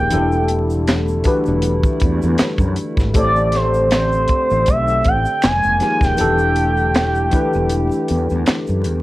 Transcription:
0.00 0.10 D#3 medium
0.00 0.13 F3 medium
0.00 0.10 G#3 medium
0.00 0.10 A#3 medium
0.00 0.13 D#4 medium
0.00 0.12 G4 medium
0.00 0.13 G#4 medium
0.00 0.12 A#4 medium
0.00 0.50 G5 loud
0.09 1.22 E1 loud
0.09 3.12 D3 medium
0.09 1.04 E3 medium
0.09 3.12 G3 medium
0.09 3.12 A3 medium
0.09 1.04 D4 medium
0.09 3.12 E4 medium
0.09 1.05 E4 medium
0.09 1.05 G4 medium
0.09 1.06 A4 medium
0.09 closed hi-hat medium
0.09 shaker medium
0.32 shaker soft
0.48 closed hi-hat medium
0.70 shaker soft
0.87 finger snap medium
0.87 snare loud
0.87 clap medium
0.87 closed hi-hat medium
0.87 shaker medium
1.08 shaker soft
1.23 2.48 E3 medium
1.23 2.48 D4 medium
1.23 2.49 F#4 medium
1.23 2.49 G4 medium
1.23 muted fretless electric bass stroke soft
1.23 kick medium
1.23 closed hi-hat medium
1.23 shaker soft
1.27 2.50 B4 medium
1.46 1.81 E1 loud
1.46 shaker soft
1.62 closed hi-hat medium
1.62 shaker medium
1.84 kick medium
1.84 shaker soft
2.00 2.20 E2 medium
2.00 kick medium
2.00 closed hi-hat medium
2.22 2.38 E2 medium
2.22 shaker soft
2.38 finger snap medium
2.38 muted fretless electric bass stroke soft
2.38 snare loud
2.38 clap medium
2.38 closed hi-hat medium
2.38 shaker medium
2.58 2.75 F#2 medium
2.58 kick medium
2.58 shaker soft
2.76 closed hi-hat medium
2.76 shaker soft
2.97 3.13 G#1 medium
2.97 kick medium
2.97 snare soft
2.97 shaker soft
3.14 4.25 A1 loud
3.14 5.40 D3 medium
3.14 4.38 A3 medium
3.14 5.40 A3 medium
3.14 5.40 C4 medium
3.14 4.38 G4 medium
3.14 4.39 A4 medium
3.14 4.39 C5 medium
3.14 kick loud
3.14 closed hi-hat medium
3.14 shaker medium
3.18 3.23 C#5 medium
3.18 3.57 D5 medium
3.24 4.43 D5 loud
3.36 shaker soft
3.52 3.92 C5 medium
3.52 snare soft
3.52 closed hi-hat medium
3.74 shaker soft
3.91 4.71 C5 medium
3.91 finger snap medium
3.91 snare loud
3.91 clap medium
3.91 closed hi-hat medium
3.91 shaker medium
4.12 shaker soft
4.28 muted fretless electric bass stroke soft
4.28 kick medium
4.28 closed hi-hat medium
4.28 shaker soft
4.50 4.66 A1 medium
4.50 shaker soft
4.66 5.02 B1 medium
4.66 5.09 E5 loud
4.66 kick medium
4.66 closed hi-hat medium
4.66 shaker medium
4.88 shaker soft
5.04 5.24 A1 medium
5.04 5.47 G5 loud
5.04 kick medium
5.04 closed hi-hat medium
5.25 shaker soft
5.42 5.62 F1 loud
5.42 6.18 D#3 medium
5.42 6.18 G#3 medium
5.42 6.18 A#3 medium
5.42 5.82 G#5 loud
5.42 finger snap medium
5.42 snare loud
5.42 clap medium
5.42 closed hi-hat medium
5.42 shaker medium
5.63 5.80 F1 medium
5.63 shaker soft
5.79 6.11 F3 medium
5.79 6.12 D#4 medium
5.79 6.12 G4 medium
5.79 6.13 G#4 medium
5.79 6.13 A#4 medium
5.79 6.05 G#5 loud
5.79 snare soft
5.79 closed hi-hat medium
5.79 shaker soft
6.01 6.17 D#1 medium
6.01 8.30 G5 loud
6.01 kick medium
6.01 snare soft
6.01 shaker medium
6.17 7.29 E1 medium
6.17 9.03 D3 medium
6.17 7.11 E3 medium
6.17 9.03 G3 medium
6.17 9.03 A3 medium
6.17 7.12 D4 medium
6.17 7.12 E4 medium
6.17 9.03 G4 medium
6.17 7.13 G4 medium
6.17 closed hi-hat medium
6.17 shaker medium
6.21 7.13 A4 loud
6.38 shaker soft
6.56 closed hi-hat medium
6.77 shaker soft
6.94 finger snap medium
6.94 snare loud
6.94 clap medium
6.94 closed hi-hat medium
6.94 shaker medium
7.15 shaker soft
7.31 8.55 E3 medium
7.31 8.56 D4 medium
7.31 8.56 E4 medium
7.31 8.57 G4 medium
7.31 muted fretless electric bass stroke soft
7.31 kick medium
7.31 closed hi-hat medium
7.31 shaker soft
7.35 8.57 B4 medium
7.53 7.88 E1 medium
7.53 shaker soft
7.69 closed hi-hat medium
7.69 shaker medium
7.91 shaker medium
8.08 8.28 E2 medium
8.08 closed hi-hat medium
8.30 8.46 E2 loud
8.30 shaker soft
8.46 finger snap medium
8.46 muted fretless electric bass stroke soft
8.46 snare loud
8.46 clap medium
8.46 closed hi-hat medium
8.46 shaker medium
8.67 8.86 F#2 medium
8.67 shaker soft
8.84 9.03 E2 loud
8.84 closed hi-hat medium
8.84 shaker soft

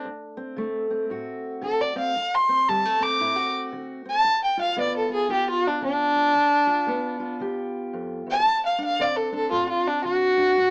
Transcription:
0.00 0.58 A3 medium
0.05 0.53 D2 medium
0.37 0.90 C4 medium
0.57 1.05 D3 medium
0.57 2.13 A3 medium
0.90 1.94 C4 medium
1.10 1.58 A2 medium
1.10 2.13 F#4 medium
1.61 2.11 D3 medium
1.61 1.82 A4 medium
1.81 1.97 D5 medium
1.96 2.13 C4 medium
1.96 2.36 F5 medium
2.16 2.64 D2 medium
2.35 2.70 C6 medium
2.49 2.99 C4 medium
2.68 3.17 D3 medium
2.68 2.85 G3 medium
2.68 3.05 A5 medium
2.85 4.26 A3 soft
3.00 4.04 C4 medium
3.00 3.54 D6 medium
3.20 3.69 A2 medium
3.20 3.36 E4 medium
3.36 4.25 F#4 soft
3.72 4.21 D3 medium
4.05 4.23 C4 medium
4.10 4.43 A5 medium
4.24 4.74 G2 medium
4.44 4.60 G5 medium
4.57 5.09 F4 medium
4.57 4.78 F5 medium
4.76 5.26 D3 medium
4.76 6.33 B3 medium
4.76 4.96 D5 medium
4.97 5.13 A4 medium
5.09 5.29 F4 medium
5.13 5.30 G#4 medium
5.28 5.78 D3 medium
5.28 6.14 F4 medium
5.28 5.48 G4 medium
5.50 5.69 F4 medium
5.67 5.83 D4 medium
5.81 6.31 D3 medium
5.81 7.37 D4 loud
6.15 6.33 F4 soft
6.34 6.83 G2 medium
6.67 7.18 F4 medium
6.87 7.36 D3 medium
6.87 8.43 B3 medium
7.20 8.43 F4 medium
7.40 7.89 D3 medium
7.40 8.44 G4 medium
7.93 8.26 F2 medium
8.26 8.45 E2 medium
8.31 8.64 A5 loud
8.45 8.94 D2 medium
8.66 8.82 F5 medium
8.78 9.31 D4 medium
8.85 9.03 F5 medium
8.99 9.48 D3 medium
8.99 10.55 C4 medium
8.99 9.18 D5 medium
9.16 9.33 A4 medium
9.32 9.51 D4 medium
9.32 9.51 A4 medium
9.51 10.00 A2 medium
9.51 10.36 D4 medium
9.51 9.68 F4 medium
9.69 9.89 F4 medium
9.87 10.04 D4 medium
10.04 10.53 D3 medium
10.04 10.70 F#4 loud
10.37 10.55 D4 medium
10.57 10.70 A2 medium

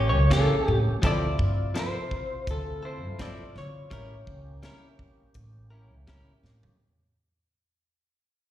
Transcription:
0.00 0.14 A1 medium
0.00 0.19 A#3 soft
0.00 0.99 A#3 medium
0.00 0.19 C#4 soft
0.00 0.99 C#4 medium
0.00 0.18 G4 soft
0.00 1.00 G4 medium
0.09 0.33 C#5 medium
0.14 0.46 C#2 medium
0.31 0.54 E3 medium
0.31 0.54 A#3 medium
0.31 0.55 C#4 medium
0.31 0.55 G4 medium
0.31 0.77 A4 medium
0.31 kick medium
0.31 snare loud
0.31 closed hi-hat medium
0.68 0.85 A2 medium
0.87 muted upright bass stroke soft
1.02 1.35 D2 medium
1.02 3.87 C3 medium
1.02 1.26 F3 medium
1.02 1.26 C4 medium
1.02 3.88 E4 medium
1.02 1.27 E4 medium
1.02 3.88 F4 medium
1.02 1.27 A4 medium
1.02 kick loud
1.02 closed hi-hat medium
1.06 1.79 D5 medium
1.39 1.70 G2 medium
1.39 kick medium
1.75 1.98 F3 medium
1.75 1.98 C4 medium
1.75 1.99 E4 medium
1.75 1.99 A4 medium
1.75 snare loud
1.75 closed hi-hat medium
1.79 2.52 C5 medium
2.11 kick medium
2.47 3.03 D2 medium
2.47 2.83 A4 medium
2.47 kick loud
2.47 closed hi-hat medium
2.83 3.08 C4 soft
2.83 3.07 E4 soft
2.83 3.06 A4 soft
2.83 3.21 C5 medium
3.03 3.34 G2 medium
3.19 3.42 F3 medium
3.19 3.43 C4 medium
3.19 3.43 E4 medium
3.19 3.43 A4 medium
3.19 3.54 D5 medium
3.19 kick medium
3.19 snare loud
3.19 closed hi-hat medium
3.39 muted upright bass stroke soft
3.56 3.72 D3 medium
3.56 6.42 C#5 medium
3.56 snare soft
3.75 muted upright bass stroke soft
3.91 4.23 A1 medium
3.91 4.14 G3 medium
3.91 6.76 A#3 medium
3.91 4.14 C#4 medium
3.91 6.76 C#4 medium
3.91 4.15 E4 medium
3.91 6.77 G4 medium
3.91 4.15 A#4 medium
3.91 kick loud
3.91 closed hi-hat medium
4.27 4.59 C#2 medium
4.27 kick medium
4.63 4.86 G3 medium
4.63 4.87 C#4 medium
4.63 4.87 E4 medium
4.63 4.87 A#4 medium
4.63 snare loud
4.63 closed hi-hat medium
4.99 kick medium
5.34 5.91 A1 medium
5.34 kick loud
5.34 closed hi-hat medium
5.70 5.96 C#4 soft
5.70 5.95 E4 soft
5.70 5.94 A#4 soft
5.91 6.23 C#2 medium
6.07 6.31 G3 medium
6.07 6.31 C#4 medium
6.07 6.31 E4 medium
6.07 6.32 A#4 medium
6.07 kick medium
6.07 snare loud
6.07 closed hi-hat medium
6.27 muted upright bass stroke soft
6.43 6.61 A2 medium
6.43 snare medium
6.63 floor tom medium

